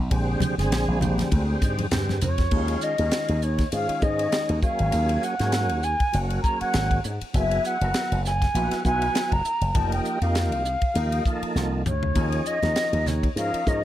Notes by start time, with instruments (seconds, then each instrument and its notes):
0.10 slap bass A#1, tonewheel organ D3 G#3 C4 G4, kick, ride
0.40 muted slap bass stroke, hi-hat pedal, ride, high conga, low conga
0.58 slap bass G#1, tonewheel organ D3 G#3 C4 G#4, snare, ride
0.71 slap bass A#1, snare, ride
0.88 slap bass A#1
1.00 tonewheel organ D3 G#3 C4 G4, hi-hat pedal, ride, low conga
1.18 snare, ride, high conga
1.31 slap bass D2, kick, ride, high conga
1.62 slap bass G#2, kick, hi-hat pedal, ride
1.78 ride, high conga
1.91 slap bass G2, tonewheel organ D3 G#3 C4 G4, snare, ride, low conga
2.09 snare, high conga
2.21 slap bass F2, tonewheel organ C4 A#4, flute C#5, hi-hat pedal, ride, low conga
2.38 kick, snare, ride
2.51 slap bass D#2, tonewheel organ D#3 G#3 C#4 F4, kick, crash
2.68 ride
2.81 flute D#5, hi-hat pedal
2.98 slap bass D#2, tonewheel organ D#3 G#3 C#4 F4, ride
3.11 snare, hi-hat pedal, ride
3.28 slap bass D#2, ride
3.42 tonewheel organ C#4 D#4, flute C#5, hi-hat pedal
3.59 kick, snare, ride
3.72 slap bass G#2, tonewheel organ D#3 G#3 C#4 F4, flute F5, hi-hat pedal, ride
3.89 muted slap bass stroke, ride
4.02 slap bass G#2, tonewheel organ D#3 G#3 C#4 D#4, flute D#5, kick, hi-hat pedal
4.19 ride
4.32 snare, hi-hat pedal, ride
4.49 slap bass D#2, ride
4.62 tonewheel organ F#3 A#3 C#4 G#4, flute F5, kick, hi-hat pedal
4.79 slap bass G#1, ride
4.92 slap bass D#2, hi-hat pedal, ride
5.09 ride
5.23 flute F#5, hi-hat pedal
5.39 slap bass G#2, tonewheel organ F#3 A#3 C#4 G#4, snare, ride
5.52 snare, hi-hat pedal, ride
5.69 slap bass D#2, ride
5.82 tonewheel organ C#4 G#4, flute G#5, hi-hat pedal
6.00 kick, ride
6.12 slap bass F#1, tonewheel organ F#3 A#3 C#4 F#4, hi-hat pedal, ride
6.30 ride
6.43 tonewheel organ F#3 A#3 C#4 G#4, flute A#5, kick, hi-hat pedal
6.61 flute F#5, muted slap bass stroke, ride
6.74 slap bass G#1, snare, hi-hat pedal, ride
6.91 kick, ride
7.04 slap bass G#2, tonewheel organ C#4 G#4, hi-hat pedal
7.21 muted slap bass stroke, ride
7.33 slap bass F#1, tonewheel organ F#3 B3 E4 G#4, flute E5, kick, hi-hat pedal, ride
7.51 ride
7.64 flute F#5, hi-hat pedal
7.81 slap bass F#1, tonewheel organ F#3 B3 E4 A#4, ride
7.94 snare, hi-hat pedal, ride
8.12 slap bass F#1, ride
8.25 tonewheel organ E4 B4, flute G#5, snare, hi-hat pedal
8.42 kick, snare, ride
8.54 slap bass A#1, tonewheel organ F#3 B3 E4 F#4, hi-hat pedal, ride
8.71 snare, ride
8.85 slap bass B1, tonewheel organ F#3 B3 E4 F#4, flute G#5, kick, hi-hat pedal
9.02 ride
9.15 snare, hi-hat pedal, ride
9.32 slap bass F#1, flute A#5, kick, ride
9.45 tonewheel organ E4 A#4, hi-hat pedal
9.61 slap bass F#1, ride
9.74 slap bass F1, tonewheel organ F3 A#3 D#4 G4, flute A5, kick, hi-hat pedal, ride
9.92 flute G5, ride
10.05 hi-hat pedal
10.22 slap bass F2, tonewheel organ F3 A#3 D#4 G4, flute F5, ride
10.35 snare, hi-hat pedal, ride
10.52 slap bass C2, ride
10.65 tonewheel organ D#4 G4, hi-hat pedal
10.82 kick, ride
10.94 slap bass D#2, tonewheel organ F3 A#3 D#4 G4, hi-hat pedal, ride
11.12 ride
11.26 tonewheel organ F3 A#3 D#4 A4, kick, hi-hat pedal
11.42 muted slap bass stroke, ride
11.55 slap bass C2, snare, hi-hat pedal
11.86 slap bass D2, tonewheel organ D#4 G4, flute C#5, hi-hat pedal, mid tom
12.03 floor tom
12.15 slap bass D#2, tonewheel organ F3 C#4 D#4 G#4, kick, hi-hat pedal, ride
12.32 ride
12.46 flute D#5, hi-hat pedal
12.63 slap bass D#2, tonewheel organ F3 C#4 D#4 A#4, snare, ride, high conga
12.76 snare, hi-hat pedal, ride
12.93 slap bass D#2, ride
13.05 tonewheel organ D#4 G#4, flute C#5, snare, hi-hat pedal, low conga
13.23 kick, ride
13.35 slap bass G#2, tonewheel organ F3 C#4 D#4 A#4, flute F5, hi-hat pedal, ride
13.54 muted slap bass stroke, ride
13.66 slap bass G#2, tonewheel organ F3 C#4 D#4 A#4, flute D#5, kick, hi-hat pedal